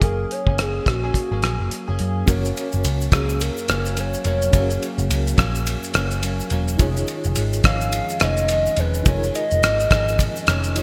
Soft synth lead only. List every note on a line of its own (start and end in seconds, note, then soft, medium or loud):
0.03 0.33 A#4 loud
0.32 0.62 C#5 medium
0.60 0.89 G#4 loud
0.88 2.00 F#4 loud
3.14 3.43 G#4 medium
3.41 4.01 A#4 loud
3.99 4.27 C#5 loud
4.27 4.79 C#5 loud
7.66 8.24 F5 loud
8.22 8.80 D#5 loud
8.79 9.10 B4 loud
9.08 9.35 C#5 loud
9.35 10.83 D#5 loud